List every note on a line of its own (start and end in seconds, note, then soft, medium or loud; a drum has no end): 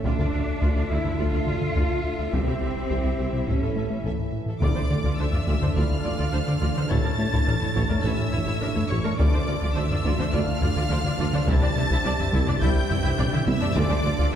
0.03 0.12 D2 medium
0.03 0.11 D2 medium
0.03 2.33 D4 medium
0.03 0.89 D4 loud
0.03 0.11 F4 medium
0.03 2.29 A4 medium
0.03 0.11 D5 medium
0.03 4.57 E5 medium
0.03 4.37 E5 medium
0.03 4.29 E5 medium
0.03 taiko loud
0.18 0.24 D2 medium
0.18 0.27 D3 medium
0.18 0.25 F4 medium
0.18 0.26 D5 soft
0.18 taiko low soft
0.33 0.39 D2 medium
0.33 0.42 D2 medium
0.33 0.40 D2 medium
0.33 0.39 F4 soft
0.33 0.39 D5 soft
0.47 0.56 D2 medium
0.62 0.70 D2 medium
0.62 0.68 D2 medium
0.62 0.67 F4 medium
0.62 0.68 D5 medium
0.62 taiko medium
0.76 0.85 D2 medium
0.76 0.82 D2 soft
0.76 0.82 F4 soft
0.76 0.82 D5 medium
0.76 taiko low soft
0.90 0.99 D2 medium
0.90 0.96 D2 medium
0.90 0.97 D2 medium
0.90 1.19 E4 medium
0.90 0.96 F4 medium
0.90 0.98 D5 medium
1.04 1.10 D2 medium
1.04 1.13 D3 medium
1.04 1.10 F4 soft
1.04 1.12 D5 soft
1.04 taiko low soft
1.18 1.27 D2 medium
1.18 1.25 D2 medium
1.18 2.33 F4 medium
1.18 1.24 F4 medium
1.18 1.25 D5 medium
1.18 taiko medium
1.33 1.41 D2 medium
1.33 1.40 D2 soft
1.33 1.39 F4 medium
1.33 1.39 D5 medium
1.47 1.53 D2 medium
1.47 1.54 D2 medium
1.47 1.55 D3 medium
1.47 1.53 F4 medium
1.47 1.54 D5 soft
1.47 taiko low medium
1.61 1.70 D3 medium
1.61 taiko low soft
1.75 1.84 D2 medium
1.75 1.82 D2 medium
1.75 1.83 D2 medium
1.75 1.82 F4 medium
1.75 1.82 D5 medium
1.75 taiko medium
1.90 1.99 D2 medium
2.04 2.13 D2 medium
2.19 2.27 D2 medium
2.19 2.25 D2 soft
2.19 2.25 F4 soft
2.19 2.25 D5 medium
2.31 2.42 C2 medium
2.31 2.39 C2 medium
2.31 3.47 C4 medium
2.31 4.61 E4 medium
2.31 3.47 G4 medium
2.31 3.44 G4 medium
2.31 2.39 G4 medium
2.31 2.41 E5 medium
2.31 taiko medium
2.47 2.53 C2 soft
2.47 2.56 C3 medium
2.47 2.53 G4 soft
2.47 2.55 E5 soft
2.61 2.67 C2 soft
2.61 2.70 C2 medium
2.61 2.68 C2 soft
2.61 2.67 G4 soft
2.61 2.69 E5 soft
2.76 2.85 C2 medium
2.90 2.96 C2 medium
2.90 2.99 C2 medium
2.90 2.97 C2 medium
2.90 2.96 G4 medium
2.90 2.97 E5 medium
2.90 taiko medium
3.04 3.13 C2 medium
3.04 3.10 C2 soft
3.04 3.10 G4 medium
3.04 3.11 E5 soft
3.19 3.27 C2 medium
3.19 3.25 C2 soft
3.19 3.25 G4 soft
3.19 3.27 E5 soft
3.33 3.39 C2 soft
3.33 3.42 C3 medium
3.33 3.39 G4 soft
3.33 3.41 E5 soft
3.46 3.54 A1 medium
3.46 3.56 A2 medium
3.46 4.57 E3 medium
3.46 4.04 C#4 medium
3.46 4.60 A4 medium
3.46 4.29 A4 medium
3.46 3.54 A4 medium
3.46 taiko medium
3.50 3.55 E5 medium
3.61 3.69 A1 soft
3.61 3.70 A2 medium
3.61 3.68 A4 soft
3.61 3.70 E5 soft
3.76 3.83 A1 soft
3.76 3.84 A3 medium
3.76 3.82 A4 soft
3.76 3.84 E5 soft
3.90 3.99 A3 medium
4.04 4.11 A1 medium
4.04 4.13 A2 medium
4.04 4.11 A4 medium
4.04 4.12 E5 medium
4.04 taiko medium
4.18 4.27 A2 medium
4.32 4.41 A2 medium
4.46 4.54 A1 soft
4.46 4.55 A2 medium
4.46 4.53 A4 soft
4.46 4.55 E5 soft
4.60 4.70 D2 medium
4.60 4.68 D2 medium
4.60 4.67 D3 medium
4.60 9.15 E3 medium
4.60 4.82 D4 medium
4.60 9.15 D4 medium
4.60 4.81 E4 medium
4.60 4.68 F4 medium
4.60 9.15 A4 medium
4.60 6.87 D5 medium
4.60 4.68 D5 medium
4.60 5.16 D5 medium
4.60 5.14 D6 medium
4.60 taiko loud
4.75 4.84 D2 medium
4.75 4.82 D3 medium
4.75 4.82 D4 medium
4.75 4.82 C5 soft
4.90 4.96 D2 medium
4.90 4.96 D3 soft
4.90 4.99 D3 medium
4.90 4.96 F4 soft
4.90 4.96 D5 soft
5.04 5.13 D2 medium
5.04 5.11 D3 medium
5.04 5.10 F4 medium
5.04 5.10 D5 medium
5.04 taiko medium
5.18 5.27 D2 medium
5.18 5.25 D2 medium
5.18 5.25 D3 soft
5.18 5.25 D4 medium
5.18 5.25 C5 medium
5.18 5.75 E5 medium
5.18 5.76 E6 medium
5.32 5.41 D2 medium
5.32 5.39 D3 medium
5.32 5.39 F4 medium
5.32 5.39 D5 medium
5.32 taiko low soft
5.47 5.56 D2 medium
5.47 5.53 D2 medium
5.47 5.53 D3 medium
5.47 5.53 F4 medium
5.47 5.54 D5 medium
5.47 taiko medium
5.62 5.70 D3 medium
5.62 5.68 D3 medium
5.62 5.68 D4 medium
5.62 5.68 C5 soft
5.62 taiko low soft
5.75 5.82 D2 medium
5.75 5.85 D2 medium
5.75 5.82 D3 medium
5.75 5.96 D4 medium
5.75 5.96 E4 medium
5.75 5.82 F4 medium
5.75 5.82 D5 medium
5.75 6.92 F5 medium
5.75 6.88 F6 medium
5.75 taiko medium
5.91 5.99 D2 medium
6.04 6.10 D2 medium
6.04 6.11 D2 medium
6.04 6.14 D2 medium
6.04 6.10 D3 medium
6.04 6.10 F4 medium
6.04 6.10 D5 medium
6.04 taiko low medium
6.19 6.28 D2 loud
6.19 6.25 D3 medium
6.19 6.24 F4 medium
6.19 6.25 D5 medium
6.32 6.38 D2 medium
6.32 6.42 D2 medium
6.32 6.39 D3 medium
6.32 6.38 D4 medium
6.32 6.39 C5 medium
6.46 6.56 D3 medium
6.46 6.54 D3 medium
6.46 6.53 F4 medium
6.46 6.52 D5 medium
6.46 taiko low soft
6.61 6.67 D2 medium
6.61 6.71 D2 medium
6.61 6.68 D3 medium
6.61 6.67 F4 medium
6.61 6.67 D5 medium
6.76 6.82 D3 medium
6.76 6.86 D3 medium
6.76 6.82 D4 medium
6.76 6.82 C5 medium
6.89 6.96 A1 medium
6.89 6.99 A2 medium
6.89 6.96 A2 medium
6.89 7.10 C#4 medium
6.89 6.95 E4 medium
6.89 7.10 E4 medium
6.89 6.95 C#5 medium
6.89 9.20 C#5 medium
6.89 8.02 A5 loud
6.89 8.05 A6 loud
6.89 taiko loud
7.04 7.11 A2 medium
7.04 7.13 A2 medium
7.04 7.10 D4 soft
7.04 7.10 A#4 medium
7.18 7.24 A1 medium
7.18 7.25 A1 medium
7.18 7.26 A2 medium
7.18 7.27 A3 medium
7.18 7.24 E4 medium
7.18 7.24 C#5 soft
7.32 7.42 A2 loud
7.32 7.40 A2 medium
7.32 7.38 E4 medium
7.32 7.38 C#5 medium
7.32 taiko medium
7.47 7.53 A1 medium
7.47 7.54 A1 medium
7.47 7.56 A2 medium
7.47 7.54 A2 medium
7.47 7.53 D4 soft
7.47 7.53 A#4 medium
7.61 7.70 A2 medium
7.61 7.68 A2 medium
7.61 7.67 E4 medium
7.61 7.67 C#5 medium
7.61 taiko low medium
7.75 7.82 A1 medium
7.75 7.84 A2 medium
7.75 7.82 A2 medium
7.75 7.81 E4 medium
7.75 7.81 C#5 medium
7.75 taiko medium
7.89 7.97 A2 medium
7.89 7.99 A3 medium
7.89 7.95 D4 medium
7.89 7.95 A#4 medium
7.89 taiko low medium
8.04 8.10 A1 medium
8.04 8.11 A1 medium
8.04 8.13 A2 loud
8.04 8.11 A2 medium
8.04 8.24 C#4 medium
8.04 8.24 E4 medium
8.04 8.10 E4 medium
8.04 8.10 C#5 medium
8.04 8.91 E5 medium
8.04 8.90 E6 medium
8.04 taiko medium
8.19 8.28 A2 medium
8.32 8.39 A1 medium
8.32 8.40 A1 medium
8.32 8.42 A2 medium
8.32 8.39 A2 medium
8.32 8.38 E4 medium
8.32 8.38 C#5 medium
8.32 taiko low medium
8.46 8.53 A2 medium
8.46 8.56 A2 loud
8.46 8.53 E4 medium
8.46 8.52 C#5 medium
8.61 8.67 A1 soft
8.61 8.68 A1 medium
8.61 8.70 A2 medium
8.61 8.68 A2 medium
8.61 8.67 D4 medium
8.61 8.67 A#4 medium
8.75 8.83 A2 medium
8.75 8.85 A3 medium
8.75 8.81 E4 medium
8.75 8.81 C#5 medium
8.75 taiko low soft
8.89 8.96 A1 medium
8.89 8.96 A2 medium
8.89 8.99 A2 medium
8.89 8.96 E4 medium
8.89 9.19 C#5 medium
8.89 8.96 C#5 medium
8.89 9.18 C#6 medium
9.04 9.11 A2 medium
9.04 9.14 A3 medium
9.04 9.10 D4 medium
9.04 9.10 A#4 medium
9.18 9.25 D2 medium
9.18 9.28 D2 loud
9.18 9.25 D3 medium
9.18 13.73 E3 medium
9.18 9.40 A3 medium
9.18 13.72 D4 medium
9.18 9.40 E4 medium
9.18 9.24 F4 medium
9.18 11.44 A4 medium
9.18 9.24 D5 medium
9.18 11.48 D5 medium
9.18 9.75 D5 medium
9.18 9.74 D6 medium
9.18 taiko loud
9.33 9.42 D2 medium
9.33 9.40 D3 medium
9.33 9.39 D4 medium
9.33 9.39 C5 medium
9.48 9.53 D2 medium
9.48 9.54 D2 medium
9.48 9.57 D3 medium
9.48 9.54 D3 medium
9.48 9.54 F4 medium
9.48 9.54 D5 medium
9.62 9.71 D2 medium
9.62 9.68 D3 medium
9.62 9.67 F4 medium
9.62 9.68 D5 medium
9.62 taiko medium
9.74 9.82 D2 medium
9.74 9.85 D2 medium
9.74 9.83 D2 medium
9.74 9.83 D3 medium
9.74 9.82 D4 medium
9.74 9.82 C5 medium
9.74 10.32 E5 medium
9.74 10.32 E6 medium
9.91 9.99 D2 medium
9.91 9.96 D3 medium
9.91 9.97 F4 medium
9.91 9.97 D5 medium
9.91 taiko low medium
10.04 10.10 D2 medium
10.04 10.13 D2 loud
10.04 10.11 D2 medium
10.04 10.10 D3 medium
10.04 10.11 F4 medium
10.04 10.11 D5 medium
10.04 taiko medium
10.19 10.27 D3 medium
10.19 10.25 D3 medium
10.19 10.25 D4 medium
10.19 10.25 C5 medium
10.19 taiko low medium
10.32 10.39 D2 medium
10.32 10.42 D2 loud
10.32 10.40 D2 medium
10.32 10.39 D3 medium
10.32 10.54 A3 medium
10.32 10.54 E4 medium
10.32 10.39 F4 medium
10.32 10.39 D5 medium
10.32 11.47 F5 medium
10.32 11.47 F6 loud
10.32 taiko medium
10.48 10.56 D2 medium
10.61 10.70 D2 medium
10.61 10.68 D2 medium
10.61 10.69 D2 medium
10.61 10.67 D3 medium
10.61 10.68 F4 medium
10.61 10.68 D5 medium
10.61 taiko low medium
10.76 10.85 D2 loud
10.76 10.81 D3 medium
10.76 10.82 F4 medium
10.76 10.82 D5 medium
10.89 10.98 D2 medium
10.89 10.96 D2 medium
10.89 10.98 D2 medium
10.89 10.95 D3 medium
10.89 10.96 D4 medium
10.89 10.97 C5 medium
11.04 11.10 D3 medium
11.04 11.13 D3 medium
11.04 11.11 F4 medium
11.04 11.11 D5 medium
11.04 taiko low soft
11.17 11.27 D2 loud
11.17 11.24 D2 medium
11.17 11.26 D2 medium
11.17 11.23 D3 medium
11.17 11.25 F4 medium
11.17 11.25 D5 medium
11.33 11.39 D3 medium
11.33 11.42 D3 medium
11.33 11.39 D4 medium
11.33 11.40 C5 medium
11.47 11.53 C2 medium
11.47 11.56 C2 loud
11.47 11.54 C2 medium
11.47 11.53 C3 loud
11.47 11.68 G3 medium
11.47 11.67 E4 medium
11.47 11.54 E4 medium
11.47 13.77 G4 medium
11.47 13.77 C5 medium
11.47 11.54 E5 medium
11.47 12.60 A5 loud
11.47 12.62 A6 loud
11.47 taiko loud
11.61 11.71 C2 medium
11.61 11.67 C3 medium
11.61 11.68 D4 medium
11.61 11.68 D5 medium
11.75 11.81 C2 medium
11.75 11.83 C2 medium
11.75 11.81 C3 medium
11.75 11.85 C3 medium
11.75 11.83 E4 medium
11.75 11.83 E5 medium
11.90 11.99 C2 loud
11.90 11.96 C3 loud
11.90 11.97 E4 medium
11.90 11.97 E5 medium
11.90 taiko medium
12.03 12.09 C2 medium
12.03 12.14 C2 medium
12.03 12.11 C2 medium
12.03 12.10 C3 medium
12.03 12.11 D4 medium
12.03 12.11 D5 medium
12.18 12.28 C2 medium
12.18 12.24 C3 medium
12.18 12.25 E4 medium
12.18 12.25 E5 medium
12.18 taiko low medium
12.32 12.38 C2 loud
12.32 12.42 C2 medium
12.32 12.40 C2 medium
12.32 12.38 C3 loud
12.32 12.40 E4 loud
12.32 12.39 E5 loud
12.32 taiko medium
12.47 12.53 C3 medium
12.47 12.56 C3 medium
12.47 12.53 D4 medium
12.47 12.53 D5 medium
12.47 taiko low medium
12.61 12.70 C2 loud
12.61 12.68 C2 medium
12.61 12.67 C3 loud
12.61 12.82 G3 medium
12.61 12.67 E4 loud
12.61 12.82 E4 medium
12.61 12.67 E5 medium
12.61 13.46 G5 medium
12.61 13.48 G6 loud
12.61 taiko medium
12.76 12.85 C2 medium
12.90 12.99 C2 medium
12.90 12.97 C2 medium
12.90 12.96 C3 medium
12.90 12.95 E4 medium
12.90 12.96 E5 medium
12.90 taiko low medium
13.04 13.13 C2 loud
13.04 13.10 C3 loud
13.04 13.10 E4 medium
13.04 13.10 E5 loud
13.19 13.27 C2 medium
13.19 13.25 C2 medium
13.19 13.25 C3 medium
13.19 13.25 D4 medium
13.19 13.25 D5 medium
13.19 taiko low-mid medium
13.33 13.42 C3 medium
13.33 13.39 C3 medium
13.33 13.39 E4 medium
13.33 13.39 E5 medium
13.33 taiko mid medium
13.46 13.53 C2 loud
13.46 13.56 C2 loud
13.46 13.53 C2 loud
13.46 13.53 C3 loud
13.46 13.54 E4 medium
13.46 13.75 E5 loud
13.46 13.53 E5 medium
13.46 13.76 E6 loud
13.46 taiko high medium
13.61 13.70 C3 medium
13.61 13.68 C3 medium
13.61 13.68 D4 medium
13.61 13.68 D5 medium
13.61 taiko low loud
13.75 13.82 D2 loud
13.75 13.85 D2 loud
13.75 13.82 D2 loud
13.75 13.82 D3 loud
13.75 14.35 E3 medium
13.75 13.97 E3 medium
13.75 14.35 D4 medium
13.75 13.97 D4 medium
13.75 13.82 F4 loud
13.75 14.35 A4 medium
13.75 14.35 D5 medium
13.75 14.33 D5 loud
13.75 13.82 D5 loud
13.75 14.33 D6 loud
13.75 taiko loud
13.90 13.99 D2 medium
13.90 13.97 D3 medium
13.90 13.96 D4 medium
13.90 13.96 C5 medium
14.04 14.11 D2 medium
14.04 14.13 D3 medium
14.04 14.11 D3 medium
14.04 14.11 F4 medium
14.04 14.11 D5 medium
14.18 14.27 D2 loud
14.18 14.25 D3 loud
14.18 14.24 F4 loud
14.18 14.24 D5 loud
14.18 taiko medium